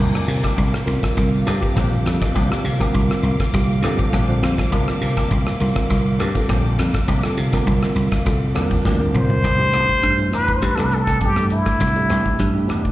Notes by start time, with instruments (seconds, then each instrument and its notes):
Already playing: reed electric piano D3 G3 C4 F4 A#4, clean electric guitar F3 A#3 D4 G4
0.00 slap bass C2, string section A#3 F5 D6
0.15 cross-stick
0.27 slap bass C3, muted clean electric guitar stroke, ride
0.43 clean electric guitar A#3 D4 G4, kick, cross-stick, ride
0.57 slap bass C2, muted clean electric guitar stroke, kick, ride
0.72 muted clean electric guitar stroke, cross-stick
0.85 slap bass C2, reed electric piano D3 G3 C4 F4 A#4, ride
1.02 muted clean electric guitar stroke, kick, cross-stick, ride
1.17 slap bass C2, kick, cross-stick, ride
1.46 slap bass G2, clean electric guitar F3 A#3 D4 G4, cross-stick, ride
1.61 reed electric piano D3 G3 C4 F4 G4, muted clean electric guitar stroke, muted slap bass stroke, kick, ride
1.76 slap bass A#1, clean electric guitar F3 A#3 D4 G4, kick, cross-stick, ride
1.91 muted clean electric guitar stroke
2.06 slap bass F2, muted clean electric guitar stroke, cross-stick, ride
2.21 muted clean electric guitar stroke, kick, cross-stick, ride
2.35 slap bass C2, clean electric guitar F3 A#3 D4 G4, kick, ride
2.50 reed electric piano D3 G3 C4 F4 G4, cross-stick
2.64 slap bass C3, muted clean electric guitar stroke, ride
2.79 reed electric piano D3 G3 C4 F4 A#4, clean electric guitar A#3 D4 G4, kick, cross-stick, ride
2.94 slap bass C2, muted clean electric guitar stroke, kick, ride
3.11 muted clean electric guitar stroke, cross-stick
3.23 slap bass C2, ride
3.40 muted clean electric guitar stroke, kick, cross-stick, ride
3.53 slap bass C2, reed electric piano D3 G3 C4 F4 G4, kick, cross-stick, ride
3.82 slap bass G2, reed electric piano D3 G3 C4 F4 A4, clean electric guitar F3 A#3 D4 G4, cross-stick, ride
3.99 muted clean electric guitar stroke, muted slap bass stroke, kick, ride
4.13 slap bass A#1, clean electric guitar F3 A#3 D4 G4, kick, cross-stick, ride
4.28 reed electric piano D3 G3 C4 F4 C5, muted clean electric guitar stroke
4.42 slap bass F2, muted clean electric guitar stroke, cross-stick, ride
4.58 muted clean electric guitar stroke, kick, cross-stick, ride
4.71 slap bass C2, reed electric piano D3 G3 C4 F4 A#4, clean electric guitar F3 A#3 D4 G4, kick, ride
4.88 cross-stick
5.01 slap bass C3, muted clean electric guitar stroke, ride
5.17 clean electric guitar A#3 D4 G4, kick, cross-stick, ride
5.30 slap bass C2, muted clean electric guitar stroke, kick, ride
5.46 muted clean electric guitar stroke, cross-stick
5.60 slap bass C2, reed electric piano D3 G3 C4 F4 A#4, ride
5.75 muted clean electric guitar stroke, kick, cross-stick, ride
5.90 slap bass C2, kick, cross-stick, ride
6.19 slap bass G2, clean electric guitar F3 A#3 D4 G4, cross-stick, ride
6.35 reed electric piano D3 G3 C4 F4 A4, muted slap bass stroke, muted clean electric guitar stroke, kick, ride
6.49 slap bass A#1, clean electric guitar F3 A#3 D4 G4, kick, cross-stick, ride
6.64 muted clean electric guitar stroke
6.79 slap bass F2, muted clean electric guitar stroke, cross-stick, ride
6.94 muted clean electric guitar stroke, kick, cross-stick, ride
7.08 slap bass C2, clean electric guitar F3 A#3 D4 G4, kick, ride
7.23 reed electric piano D3 G3 C4 F4 A4, cross-stick
7.37 slap bass C3, muted clean electric guitar stroke, ride
7.53 reed electric piano D3 G3 C4 F4 A#4, clean electric guitar A#3 D4 G4, kick, cross-stick, ride
7.67 slap bass C2, muted clean electric guitar stroke, kick, ride
7.82 muted clean electric guitar stroke, cross-stick
7.96 slap bass C2, ride
8.12 muted clean electric guitar stroke, kick, cross-stick, ride
8.25 slap bass C2, reed electric piano D3 G3 C4 F4 A4, kick, cross-stick, ride
8.54 slap bass E2, reed electric piano D3 G3 C4 F4 A#4, clean electric guitar F3 A#3 D4 G4, cross-stick, ride
8.70 muted clean electric guitar stroke, kick, ride
8.84 slap bass D2, clean electric guitar F3 A#3 D4 G4, kick, snare
8.99 reed electric piano D3 G3 C4 F4 A#4, muted clean electric guitar stroke
9.14 slap bass C2, muted trumpet C5, muted clean electric guitar stroke, mid tom
9.30 muted clean electric guitar stroke, floor tom
9.43 slap bass C2, clean electric guitar E3 B3 D4 G4, kick, cross-stick, closed hi-hat
9.58 reed electric piano B2 E3 A3 D4 G4, muted clean electric guitar stroke
9.73 slap bass C2, clean electric guitar E3 B3 D4 G4, cross-stick, closed hi-hat
9.89 muted clean electric guitar stroke, muted slap bass stroke, kick, closed hi-hat
10.03 slap bass G2, kick, cross-stick, closed hi-hat
10.18 reed electric piano B2 E3 A3 D4 E4, muted clean electric guitar stroke, closed hi-hat
10.33 slap bass E2, clean electric guitar E3 B3 D4 G4, muted trumpet B4, cross-stick, closed hi-hat
10.48 muted clean electric guitar stroke, kick, closed hi-hat
10.56 muted trumpet C5
10.62 slap bass G2, muted clean electric guitar stroke, kick, cross-stick, closed hi-hat
10.66 muted trumpet B4
10.76 slap bass C2, reed electric piano B2 E3 A3 D4 A4, clean electric guitar E3 B3 D4 G4, muted trumpet A4, cross-stick, closed hi-hat
10.85 muted trumpet B4
10.91 muted trumpet A4, muted clean electric guitar stroke, closed hi-hat
11.07 clean electric guitar B3 D4 G4, kick, cross-stick, closed hi-hat
11.21 slap bass G2, clean electric guitar E3 B3 D4 G4, muted trumpet G4, kick, closed hi-hat
11.36 reed electric piano B2 E3 A3 D4 A4, muted clean electric guitar stroke, cross-stick
11.50 muted trumpet E4, muted clean electric guitar stroke, closed hi-hat
11.65 muted slap bass stroke, kick, cross-stick, closed hi-hat
11.80 slap bass C2, kick, cross-stick, closed hi-hat
11.96 reed electric piano B2 E3 A3 D4 G4, muted clean electric guitar stroke, closed hi-hat
12.09 slap bass C2, clean electric guitar E3 B3 D4 G4, cross-stick, closed hi-hat
12.25 muted clean electric guitar stroke, kick
12.39 slap bass G2, kick, cross-stick, closed hi-hat
12.54 reed electric piano B2 E3 A3 D4 G4, muted clean electric guitar stroke
12.68 slap bass E2, clean electric guitar E3 B3 D4 G4, cross-stick, closed hi-hat
12.84 muted clean electric guitar stroke, kick, closed hi-hat